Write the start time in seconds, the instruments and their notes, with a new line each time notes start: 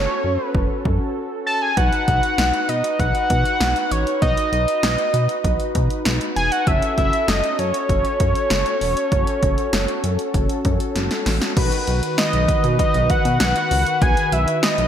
Already playing: analog polysynth C#4 F#4 A4, analog synth lead C#5
0.24 analog synth bass F#2
0.44 analog synth lead B4
0.55 analog synth bass F#1, kick
0.85 analog synth bass F#2, kick
1.46 analog synth lead A5
1.62 analog synth lead G#5
1.77 analog synth bass B1, analog polysynth D#4 F#4 B4, analog synth lead F#5, kick, closed hi-hat
1.93 closed hi-hat
2.08 analog synth bass B1, kick, closed hi-hat
2.23 closed hi-hat
2.38 analog synth bass B1, snare, closed hi-hat
2.54 closed hi-hat
2.69 analog synth bass B2, analog synth lead D#5, closed hi-hat
2.84 closed hi-hat
2.99 analog synth bass B1, analog synth lead F#5, kick, closed hi-hat
3.15 closed hi-hat
3.30 analog synth bass B2, kick, closed hi-hat
3.46 closed hi-hat
3.60 analog synth bass B1, snare, closed hi-hat
3.76 closed hi-hat
3.91 analog synth bass A1, analog synth lead C#5, closed hi-hat
4.07 closed hi-hat
4.22 analog synth bass B1, analog synth lead D#5, kick, closed hi-hat
4.37 closed hi-hat
4.52 analog synth bass B1, analog synth lead D#5, closed hi-hat
4.68 closed hi-hat
4.83 analog synth bass B1, snare, closed hi-hat
4.98 closed hi-hat
5.14 analog synth bass B2, closed hi-hat
5.29 closed hi-hat
5.44 analog synth bass B1, kick, closed hi-hat
5.60 closed hi-hat
5.75 analog synth bass B2, kick, closed hi-hat
5.90 closed hi-hat
6.05 analog synth bass B1, snare, closed hi-hat
6.21 closed hi-hat
6.36 analog synth bass E1, analog synth lead G#5, closed hi-hat
6.52 analog synth lead F#5, closed hi-hat
6.67 analog synth bass F#1, analog polysynth C#4 F#4 A4, analog synth lead E5, kick, closed hi-hat
6.82 closed hi-hat
6.98 analog synth bass F#1, analog synth lead E5, kick, closed hi-hat
7.13 closed hi-hat
7.28 analog synth bass F#1, analog synth lead D#5, snare, closed hi-hat
7.44 closed hi-hat
7.59 analog synth bass F#2, analog synth lead C#5, closed hi-hat
7.74 closed hi-hat
7.89 analog synth bass F#1, kick, closed hi-hat
8.05 closed hi-hat
8.20 analog synth bass F#2, kick, closed hi-hat
8.35 closed hi-hat
8.50 analog synth bass F#1, snare, closed hi-hat
8.66 closed hi-hat
8.81 analog synth bass E1, open hi-hat
8.97 closed hi-hat
9.12 analog synth bass F#1, kick, closed hi-hat
9.27 closed hi-hat
9.43 analog synth bass F#1, kick, closed hi-hat
9.58 closed hi-hat
9.73 analog synth bass F#1, snare, closed hi-hat
9.88 closed hi-hat
10.04 analog synth bass F#2, closed hi-hat
10.19 closed hi-hat
10.34 analog synth bass F#1, kick, closed hi-hat
10.49 closed hi-hat
10.65 analog synth bass F#2, kick, closed hi-hat
10.80 closed hi-hat
10.96 analog synth bass F#1, snare, closed hi-hat
11.11 snare, closed hi-hat
11.26 analog synth bass A1, snare, open hi-hat
11.41 snare, closed hi-hat
11.57 analog synth bass B1, analog polysynth D#3 F#4 B4, kick, closed hi-hat, crash
11.72 closed hi-hat
11.87 analog synth bass B1, closed hi-hat
12.03 closed hi-hat
12.18 analog synth lead D#5, snare, closed hi-hat
12.33 analog synth bass B1, closed hi-hat
12.48 kick, closed hi-hat
12.64 analog synth bass B2, closed hi-hat
12.79 analog synth lead D#5, kick, closed hi-hat
12.94 analog synth bass B1, closed hi-hat
13.10 analog synth lead F#5, kick, closed hi-hat
13.25 analog synth bass B2, closed hi-hat
13.40 analog synth bass B1, analog synth lead F#5, snare, closed hi-hat
13.56 closed hi-hat
13.71 analog synth bass C#2, open hi-hat
13.87 closed hi-hat
14.02 analog synth bass B1, analog synth lead G#5, kick, closed hi-hat
14.17 closed hi-hat
14.32 analog synth bass B1, analog synth lead E5, closed hi-hat
14.48 closed hi-hat
14.63 analog synth lead D#5, snare, closed hi-hat
14.78 analog synth bass B1, closed hi-hat